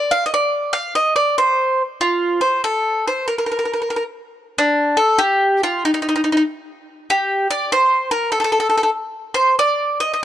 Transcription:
Already playing: D5
0.11 F5
0.26 D#5
0.34 D5
0.73 F5
0.95 D#5
1.16 D5
1.38 C5
2.01 F4
2.41 C5
2.64 A4
3.08 C5
3.28 A#4
3.38 A#4
3.46 A#4
3.52 A#4
3.59 A#4
3.65 A#4
3.73 A#4
3.82 A#4
3.90 A#4
3.96 A#4
4.58 D4
4.97 A4
5.18 G4
5.63 F4
5.85 D#4
5.94 D#4
6.02 D#4
6.09 D#4
6.16 D#4
6.24 D#4
6.32 D#4
6.37 D#4
7.10 G4
7.50 D5
7.72 C5
8.11 A#4
8.32 A4
8.40 A4
8.44 A4
8.52 A4
8.60 A4
8.70 A4
8.78 A4
8.83 A4
9.34 C5
9.59 D5
10.00 D#5
10.13 D#5

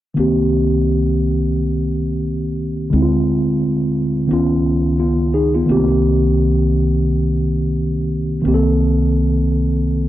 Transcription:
0.14 C2 D#3 A#3 C4
0.20 G4
2.90 D2 D3 G#3 C4
2.96 E4
3.02 F4
4.27 C#2 D#3 B3
4.31 C#4 F4
5.00 B3 F4
5.34 D#4 G#4
5.55 B3 F4
5.66 C2 D#3 A#3 C4
5.72 G4
8.42 C2 D#3 A#3 C4
8.48 G4
8.54 A4

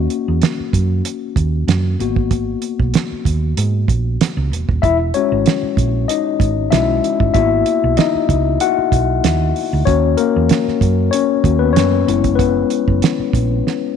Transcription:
Already playing: A#3 C#4 F#4
0.10 closed hi-hat
0.28 E2
0.42 snare, closed hi-hat
0.60 muted fingered electric bass stroke
0.73 F#2, kick, closed hi-hat
1.05 closed hi-hat
1.36 D#2, kick, closed hi-hat
1.68 F#2, snare, closed hi-hat
1.99 G#1 A#3 B3 F#4, closed hi-hat
2.16 kick
2.31 kick, closed hi-hat
2.62 closed hi-hat
2.80 B1, kick
2.94 snare, closed hi-hat
3.12 muted fingered electric bass stroke
3.25 D#2, kick, closed hi-hat
3.57 G#2, closed hi-hat
3.88 A#1, kick, closed hi-hat
4.21 snare, closed hi-hat
4.37 C#2
4.51 E1, closed hi-hat
4.69 D#1, kick
4.82 E1 E4 E5, kick, closed hi-hat
5.14 G#3 C#4 F#4 C#5, closed hi-hat
5.32 G#1
5.46 snare, closed hi-hat
5.63 muted fingered electric bass stroke
5.77 A#1, kick, closed hi-hat
6.08 D#4 D#5, closed hi-hat
6.40 G#1, kick, closed hi-hat
6.71 B1 G#3 C#4 E4 F#4 E5, snare, closed hi-hat
7.04 closed hi-hat
7.20 G1, kick
7.34 G#1 A#3 B3 E4 F#4 E5, kick, closed hi-hat
7.66 closed hi-hat
7.84 B1
7.97 D#4 D#5, snare, closed hi-hat
8.15 muted fingered electric bass stroke
8.29 C#2, kick, closed hi-hat
8.60 F#4 F#5, closed hi-hat
8.78 muted fingered electric bass stroke
8.92 B1, kick, closed hi-hat
9.24 D#2, snare, closed hi-hat
9.56 open hi-hat
9.73 D2
9.85 D#2 A#3 C#4 F#4 C#5, kick, closed hi-hat
10.17 A#3 A#4, closed hi-hat
10.36 E2
10.49 snare, closed hi-hat
10.68 muted fingered electric bass stroke, snare
10.81 F#2, kick, closed hi-hat
11.11 C#4 C#5, closed hi-hat
11.44 D#2 A#3 C#4 F#4, kick, closed hi-hat
11.59 B3 B4
11.73 F#2 C#4 C#5, closed hi-hat
11.77 snare
12.07 F#1 G#3 B3 E4, closed hi-hat
12.24 kick, closed hi-hat
12.35 B3 B4, kick
12.39 closed hi-hat
12.70 closed hi-hat
12.88 F#1, kick
13.02 snare, closed hi-hat
13.19 muted fingered electric bass stroke
13.33 A#1, kick, closed hi-hat
13.67 snare

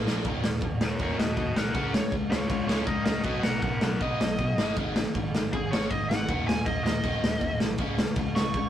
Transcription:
0.06 A#1 A#2 F3 A#3, snare
0.24 D#1 D#2 A#2 D#3, kick, crash
0.44 D#1 D#2 A#2, snare
0.61 D#1 D#2 A#2, kick, crash
0.81 D#1 D#2 A#2 A#4 C#5, snare
0.99 D#1 D#2 A#2 D#3 A#4 C#5, kick, crash
1.18 D#1 D#2 A#2 F#4 D#5, snare
1.37 D#2 A#2 F#4 D#5, kick, crash
1.56 C2 D#2 A#2 A#4 F#5, snare
1.74 C#2 C#3 G#3 C#4 A#4 F#5, kick, crash
1.94 C#3 G#3 C#5, snare
2.12 C#2 C#3 G#3, kick, crash
2.30 C#2 C#3 G#3 F4 C#5, snare
2.50 C#2 C#3 G#3 F4 C#5, kick, crash
2.68 C#2 C#3 G#3 C#4 F4 C#5, snare
2.86 C#2 C#3 G#3 A#4 D#5, kick, crash
3.05 C#2 C#3 G#3 A#4 D#5, snare
3.23 B1 B2 F#3 B3 F#4 D#5, kick, crash
3.42 B1 B2 A#4 F#5, snare
3.47 F#3
3.62 B1 B2 F#3 A#4 F#5, kick, crash
3.81 B1 B2 F#3 A#4 F#5, snare
4.01 B1 B2 F#3 B3 D#5, kick, crash
4.21 B1 B2 F#3, snare
4.38 B2 F#3, kick, crash
4.57 G#1 G#2 D#3 G#3, snare
4.76 G#1 G#2 D#3, kick, crash
4.80 G#3
4.96 G#2 D#3, snare
5.15 G#1 G#2 D#3, kick, crash
5.34 G#1 G#2 D#3, snare
5.53 G#1 G#2 D#3 G#4, kick, crash
5.71 G#1 G#2 D#3 G#3 C#5, snare
5.90 G#1 G#2 D#3 D#5, kick, crash
6.09 G#1 G#2 D#3 F#5, snare
6.29 D#1 D#2 A#2 D#3, kick, crash
6.48 D#1 D#2 A#2 G#5, snare
6.66 D#1 D#2 A#2 D#5, kick, crash
6.84 D#1 D#2 A#2 D#5, snare
7.04 D#1 D#2 A#2 D#3, kick, crash
7.22 D#1 D#2 A#2, snare
7.41 D#2 A#2, kick, crash
7.60 B1 D#2 A#2, snare
7.78 C#2 C#3 G#3 C#4, kick, crash
7.98 C#3 G#3, snare
8.16 C#2 C#3 G#3, kick, crash
8.35 C#2 C#3 G#3 C#6, snare
8.54 C#2 C#3 G#3, kick, crash

